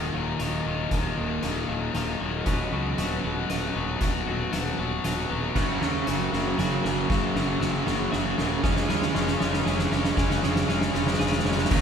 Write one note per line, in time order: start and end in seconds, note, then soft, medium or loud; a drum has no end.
0.00 0.13 D#2 medium
0.00 0.91 D#2 medium
0.00 0.13 A#2 medium
0.00 0.91 A#2 medium
0.00 0.14 D#3 medium
0.00 2.43 D#4 medium
0.00 8.59 F#4 soft
0.00 2.43 A#4 medium
0.00 2.43 F#5 medium
0.13 0.35 D#1 medium
0.13 0.39 D#2 medium
0.13 0.39 A#2 medium
0.13 0.40 D#3 medium
0.13 0.65 F#3 medium
0.39 0.60 D#1 medium
0.39 0.65 D#2 medium
0.39 0.65 A#2 medium
0.39 0.66 D#3 medium
0.39 1.94 D#4 medium
0.39 snare soft
0.39 closed hi-hat medium
0.65 0.86 D#1 medium
0.65 0.90 D#2 medium
0.65 0.90 A#2 medium
0.65 0.91 D#3 medium
0.65 1.68 F#3 medium
0.91 1.12 D#1 medium
0.91 1.16 D#2 medium
0.91 1.16 A#2 medium
0.91 1.17 D#3 medium
0.91 kick medium
0.91 snare soft
0.91 closed hi-hat medium
1.17 1.38 D#1 medium
1.17 1.42 D#2 medium
1.17 1.41 A#2 medium
1.17 1.42 D#3 medium
1.42 1.64 D#1 medium
1.42 1.67 D#2 medium
1.42 1.67 A#2 medium
1.42 1.68 D#3 medium
1.42 snare medium
1.42 closed hi-hat medium
1.68 1.90 D#1 medium
1.68 1.93 D#2 medium
1.68 1.93 A#2 medium
1.68 1.94 D#3 medium
1.68 2.20 F#3 medium
1.94 2.15 D#1 medium
1.94 2.19 D#2 medium
1.94 2.19 A#2 medium
1.94 2.20 D#3 medium
1.94 3.49 D#4 medium
1.94 snare medium
1.94 closed hi-hat medium
2.20 2.41 D#1 medium
2.20 5.55 D#2 medium
2.20 2.45 A#2 medium
2.20 2.45 D#3 medium
2.20 3.24 F#3 medium
2.45 2.67 D#1 medium
2.45 2.71 B2 medium
2.45 2.72 F#3 medium
2.45 2.72 B3 medium
2.45 8.60 C#4 medium
2.45 5.53 B4 medium
2.45 5.52 D#5 medium
2.45 kick loud
2.45 snare medium
2.45 closed hi-hat medium
2.72 2.93 C#2 medium
2.72 2.97 B2 medium
2.72 2.97 F#3 medium
2.72 2.98 B3 medium
2.98 3.19 D#1 medium
2.98 3.23 B2 medium
2.98 3.24 F#3 medium
2.98 3.24 B3 medium
2.98 snare medium
2.98 closed hi-hat medium
3.24 3.45 D#1 medium
3.24 3.48 B2 medium
3.24 3.49 F#3 medium
3.24 3.49 B3 medium
3.49 3.70 D#1 medium
3.49 3.74 B2 medium
3.49 3.75 F#3 medium
3.49 3.75 B3 medium
3.49 4.78 D#4 medium
3.49 snare medium
3.49 closed hi-hat medium
3.75 3.96 D#1 medium
3.75 4.00 B2 medium
3.75 4.01 F#3 medium
3.75 4.01 B3 medium
4.01 4.21 D#1 medium
4.01 4.25 B2 medium
4.01 4.27 F#3 medium
4.01 4.26 B3 medium
4.01 kick medium
4.01 snare medium
4.01 closed hi-hat medium
4.26 4.47 D#1 medium
4.26 4.51 B2 medium
4.26 4.52 F#3 medium
4.26 4.52 B3 medium
4.52 4.73 D#1 medium
4.52 4.77 B2 medium
4.52 4.78 F#3 medium
4.52 4.78 B3 medium
4.52 snare medium
4.52 closed hi-hat medium
4.78 4.99 D#1 medium
4.78 5.03 B2 medium
4.78 5.04 F#3 medium
4.78 5.04 B3 medium
5.04 5.25 D#1 medium
5.04 5.29 B2 medium
5.04 5.30 F#3 medium
5.04 5.30 B3 medium
5.04 5.56 D#4 medium
5.04 snare medium
5.04 closed hi-hat medium
5.30 5.51 D#1 medium
5.30 5.54 B2 medium
5.30 5.56 F#3 medium
5.30 5.55 B3 medium
5.55 5.76 F#1 medium
5.55 5.81 F#2 medium
5.55 5.81 C#3 medium
5.55 5.82 F#3 medium
5.55 8.61 A#4 medium
5.55 8.61 F#5 medium
5.55 kick medium
5.55 snare medium
5.55 crash medium
5.81 6.02 D#2 medium
5.81 6.07 F#2 medium
5.81 6.06 C#3 medium
5.81 6.08 F#3 medium
5.81 snare medium
6.07 6.27 F#1 medium
6.07 6.31 F#2 medium
6.07 6.31 C#3 medium
6.07 6.32 F#3 medium
6.07 snare medium
6.07 closed hi-hat medium
6.32 6.53 F#1 medium
6.32 6.57 F#2 medium
6.32 6.58 C#3 medium
6.32 6.58 F#3 medium
6.32 6.83 A#3 medium
6.32 snare medium
6.58 6.79 F#1 medium
6.58 6.82 F#2 medium
6.58 6.83 C#3 medium
6.58 6.83 F#3 medium
6.58 7.87 F#4 medium
6.58 snare medium
6.58 closed hi-hat medium
6.84 7.04 F#1 medium
6.84 7.07 F#2 medium
6.84 7.08 C#3 medium
6.84 7.08 F#3 medium
6.84 7.85 A#3 medium
6.84 snare medium
7.09 7.30 F#1 medium
7.09 7.34 F#2 medium
7.09 7.34 C#3 medium
7.09 7.35 F#3 medium
7.09 kick loud
7.09 snare medium
7.35 7.56 F#1 medium
7.35 7.59 F#2 medium
7.35 7.60 C#3 medium
7.35 7.60 F#3 medium
7.35 snare medium
7.61 7.81 F#1 medium
7.61 7.85 F#2 medium
7.61 7.86 C#3 medium
7.61 7.87 F#3 medium
7.61 snare medium
7.86 8.07 F#1 medium
7.86 8.10 F#2 medium
7.86 8.11 C#3 medium
7.86 8.11 F#3 medium
7.86 8.37 A#3 medium
7.86 snare medium
8.12 8.33 F#1 medium
8.12 8.35 F#2 medium
8.12 8.36 C#3 medium
8.12 8.37 F#3 medium
8.12 8.64 F#4 medium
8.12 snare medium
8.36 8.59 D#1 medium
8.36 8.61 F#2 medium
8.36 8.61 C#3 medium
8.36 8.62 F#3 medium
8.36 8.64 A#3 medium
8.36 snare medium
8.63 8.84 F1 medium
8.63 8.87 C#3 medium
8.63 8.89 G#3 medium
8.63 11.68 C#4 medium
8.63 8.89 C#4 medium
8.63 11.68 F4 medium
8.63 11.68 G#4 medium
8.63 11.68 D#5 medium
8.63 kick loud
8.63 snare medium
8.76 snare loud
8.88 9.10 D#2 medium
8.88 9.12 C#3 medium
8.88 9.14 G#3 medium
8.88 9.14 C#4 loud
8.88 snare loud
9.02 snare loud
9.13 9.35 F1 medium
9.13 9.39 C#3 medium
9.13 9.39 G#3 medium
9.13 9.39 C#4 medium
9.13 snare loud
9.28 snare loud
9.40 9.61 F1 medium
9.40 9.64 C#3 medium
9.40 9.65 G#3 medium
9.40 9.65 C#4 loud
9.40 snare loud
9.54 snare medium
9.65 9.87 F1 loud
9.65 9.90 C#3 medium
9.65 9.91 G#3 medium
9.65 9.91 C#4 loud
9.65 10.94 G#4 medium
9.65 snare medium
9.79 snare loud
9.91 10.12 F1 medium
9.91 10.15 C#3 medium
9.91 10.16 G#3 medium
9.91 10.16 C#4 loud
9.91 snare loud
10.04 snare loud
10.16 10.37 F1 medium
10.16 10.41 C#3 medium
10.16 10.42 G#3 medium
10.16 10.42 C#4 loud
10.16 kick loud
10.16 snare loud
10.30 snare loud
10.42 10.63 F1 loud
10.42 10.66 C#3 medium
10.42 10.67 G#3 medium
10.42 10.68 C#4 medium
10.42 snare loud
10.56 snare loud
10.68 10.89 F1 medium
10.68 10.92 C#3 medium
10.68 10.93 G#3 medium
10.68 10.93 C#4 medium
10.68 snare loud
10.81 snare loud
10.94 11.15 F1 medium
10.94 11.18 C#3 medium
10.94 11.18 G#3 medium
10.94 11.18 C#4 loud
10.94 snare loud
11.07 snare loud
11.13 snare loud
11.19 11.40 F1 loud
11.19 11.43 C#3 medium
11.19 11.44 G#3 medium
11.19 11.45 C#4 medium
11.19 11.70 G#4 medium
11.19 snare loud
11.26 snare loud
11.32 snare loud
11.39 snare loud
11.45 11.66 F1 medium
11.45 11.69 C#3 medium
11.45 11.69 G#3 loud
11.45 11.70 C#4 loud
11.45 snare loud
11.52 snare loud
11.58 snare loud
11.65 snare loud
11.70 11.81 D#1 loud
11.70 11.81 D#2 medium
11.70 11.81 A#2 medium
11.70 11.81 D#3 medium
11.70 11.81 F#3 loud
11.70 11.81 A#3 loud
11.70 11.81 D#4 medium
11.70 11.81 F#4 medium
11.70 11.81 A#4 medium
11.70 11.81 D#5 medium
11.70 11.81 A#5 medium
11.70 kick loud
11.70 crash loud